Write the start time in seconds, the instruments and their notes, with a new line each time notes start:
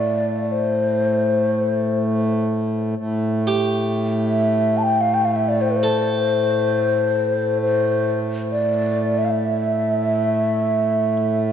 Already playing: harmonium A2, xiao D5
0.45 xiao D5
0.52 xiao C5
2.96 harmonium A2
3.47 harpsichord G4
4.26 xiao E5
4.78 xiao A5
4.83 xiao G5
5.01 xiao F5
5.14 xiao G5
5.25 xiao F5
5.36 xiao E5
5.48 xiao D5
5.61 xiao C5
5.71 xiao B4
5.76 xiao C5
5.83 harpsichord A4
7.62 xiao C5
8.52 xiao D5
9.18 xiao E5
9.25 xiao F5
9.31 xiao E5